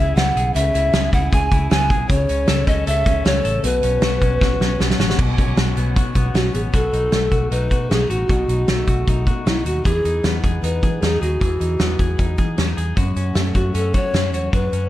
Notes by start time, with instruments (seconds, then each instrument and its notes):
Already playing: fingered electric bass C#2, clean electric guitar C#3 G#4, pan flute E5
0.00 clean electric guitar E4
0.16 fingered electric bass C#2, clean electric guitar B3, pan flute F#5, snare, closed hi-hat
0.35 fingered electric bass B1, clean electric guitar G#4, closed hi-hat
0.54 fingered electric bass C#2, clean electric guitar C#3, pan flute E5, closed hi-hat
0.74 fingered electric bass C#2, clean electric guitar E4, closed hi-hat
0.93 fingered electric bass C#2, clean electric guitar G#4, snare, closed hi-hat
1.13 fingered electric bass C#2, clean electric guitar E4, pan flute F#5, kick, closed hi-hat
1.32 fingered electric bass C#2, clean electric guitar G#4, pan flute G#5, kick, closed hi-hat
1.52 fingered electric bass C#2, clean electric guitar E4, kick, closed hi-hat
1.70 fingered electric bass C#2, clean electric guitar B3, pan flute G#5, snare, closed hi-hat
1.90 fingered electric bass B1, clean electric guitar G#4, kick, closed hi-hat
2.09 fingered electric bass C#2, clean electric guitar C#3, pan flute C#5, kick, closed hi-hat
2.29 fingered electric bass C#2, clean electric guitar C#4, closed hi-hat
2.47 fingered electric bass C#2, clean electric guitar A4, snare, closed hi-hat
2.67 fingered electric bass C#2, clean electric guitar C#4, pan flute D#5, kick, closed hi-hat
2.87 fingered electric bass C#2, clean electric guitar A4, pan flute E5, closed hi-hat
3.06 fingered electric bass C#2, clean electric guitar C#4, kick, closed hi-hat
3.25 fingered electric bass C#2, clean electric guitar A3, pan flute C#5, snare, closed hi-hat
3.45 fingered electric bass A1, clean electric guitar A4, closed hi-hat
3.64 fingered electric bass B1, clean electric guitar B2, pan flute B4, closed hi-hat
3.83 fingered electric bass B1, clean electric guitar C#4, closed hi-hat
4.02 clean electric guitar F#4, snare, closed hi-hat
4.21 fingered electric bass B1, clean electric guitar C#4, kick, closed hi-hat
4.41 fingered electric bass B1, clean electric guitar F#4, kick, snare
4.60 fingered electric bass B1, clean electric guitar C#4, snare
4.80 fingered electric bass B1, clean electric guitar B3, snare
4.90 snare
4.99 fingered electric bass A1, clean electric guitar F#4, snare
5.10 snare
5.19 fingered electric bass B1, clean electric guitar B2, kick, crash
5.38 clean electric guitar C#4, kick, closed hi-hat
5.47 fingered electric bass B1
5.57 fingered electric bass B1, clean electric guitar F#4, snare, closed hi-hat
5.76 fingered electric bass B1, clean electric guitar B3, closed hi-hat
5.96 clean electric guitar F#4, kick, closed hi-hat
6.15 fingered electric bass B1, clean electric guitar B3, kick, closed hi-hat
6.34 fingered electric bass B1, clean electric guitar C#4, pan flute F#4, snare, closed hi-hat
6.54 fingered electric bass A1, clean electric guitar B3, pan flute G#4, closed hi-hat
6.73 fingered electric bass B1, clean electric guitar B2 F#4, pan flute A4, kick, closed hi-hat
6.93 fingered electric bass B1, clean electric guitar D#4, closed hi-hat
7.12 fingered electric bass B1, clean electric guitar A3, snare, closed hi-hat
7.32 fingered electric bass B1, clean electric guitar F#4, kick, closed hi-hat
7.51 fingered electric bass B1, clean electric guitar D#4, pan flute B4, closed hi-hat
7.71 fingered electric bass B2, clean electric guitar F#4, kick, closed hi-hat
7.90 fingered electric bass B1, clean electric guitar C#4, pan flute G#4, snare, closed hi-hat
8.01 clean electric guitar D#4
8.10 fingered electric bass A1, clean electric guitar F#4, pan flute F#4, closed hi-hat
8.29 fingered electric bass B1, clean electric guitar B2 F#4, kick, closed hi-hat
8.48 fingered electric bass B1, clean electric guitar D#4, closed hi-hat
8.68 fingered electric bass B1, clean electric guitar A3, snare, closed hi-hat
8.87 fingered electric bass B1, clean electric guitar F#4, kick, closed hi-hat
9.07 fingered electric bass B1, clean electric guitar D#4, kick, closed hi-hat
9.27 fingered electric bass B2, clean electric guitar F#4, kick, closed hi-hat
9.46 fingered electric bass B1, clean electric guitar D#4, pan flute E4, snare, closed hi-hat
9.65 fingered electric bass D#2, pan flute F#4, clean electric guitar F#4, closed hi-hat
9.85 fingered electric bass E2, clean electric guitar E3 G#4, pan flute G#4, kick, closed hi-hat
10.04 fingered electric bass E2, clean electric guitar D#4, closed hi-hat
10.24 fingered electric bass E2, clean electric guitar B3, snare, closed hi-hat
10.44 fingered electric bass E2, clean electric guitar G#4, kick, closed hi-hat
10.63 fingered electric bass E2, clean electric guitar D#4, pan flute B4, closed hi-hat
10.83 fingered electric bass E3, clean electric guitar G#4, kick, closed hi-hat
11.02 fingered electric bass E2, clean electric guitar D#4, pan flute G#4, snare, closed hi-hat
11.21 fingered electric bass D#2, pan flute F#4, clean electric guitar G#4, closed hi-hat
11.41 fingered electric bass E2, clean electric guitar E3 G#4, kick, closed hi-hat
11.60 fingered electric bass E2, clean electric guitar D#4, closed hi-hat
11.79 fingered electric bass E2, clean electric guitar B3, snare, closed hi-hat
11.99 fingered electric bass E2, clean electric guitar G#4, kick, closed hi-hat
12.19 fingered electric bass E2, clean electric guitar D#4, kick, closed hi-hat
12.38 fingered electric bass E3, clean electric guitar G#4, kick, closed hi-hat
12.58 fingered electric bass E2, clean electric guitar C#4, snare, closed hi-hat
12.68 clean electric guitar D#4
12.77 fingered electric bass E2, clean electric guitar G#4, closed hi-hat
12.97 clean electric guitar F#2 F#4, fingered electric bass F#2, kick, closed hi-hat
13.16 fingered electric bass F#2, clean electric guitar C#4, closed hi-hat
13.35 fingered electric bass F#2, clean electric guitar A3, snare, closed hi-hat
13.55 fingered electric bass F#2, clean electric guitar F#4, pan flute F#4, kick, closed hi-hat
13.74 fingered electric bass F#2, clean electric guitar C#4, pan flute A4, closed hi-hat
13.94 fingered electric bass F#3, clean electric guitar F#4, pan flute C#5, kick, closed hi-hat
14.13 fingered electric bass F#2, clean electric guitar C#4, snare, closed hi-hat
14.33 fingered electric bass E2, clean electric guitar F#4, pan flute C#5, closed hi-hat
14.53 fingered electric bass F#2, clean electric guitar F#2 F#4, pan flute B4, kick, closed hi-hat
14.72 fingered electric bass F#2, clean electric guitar C#4, closed hi-hat